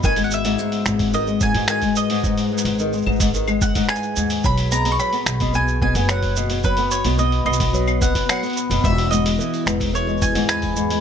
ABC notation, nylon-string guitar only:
X:1
M:4/4
L:1/16
Q:1/4=109
K:B
V:1 name="Nylon-string guitar" clef=bass
D, G,2 G,, G,,2 G,,2 D, G, G,, G,, D, G,2 G,, | G,,2 G,,2 D, G, G,, G,, D, G,2 G,, G,,2 G,,2 | F,2 B,, B,, F, B,2 B,, B,,2 B,, B, F,2 B,, B,, | F, B,2 B,, B,,2 B,, B, F,2 B,, B,, F, B,2 B,, |
G,,2 G,, G, E,2 G,, G,, E, G,2 G,, G,,2 G,, G, |]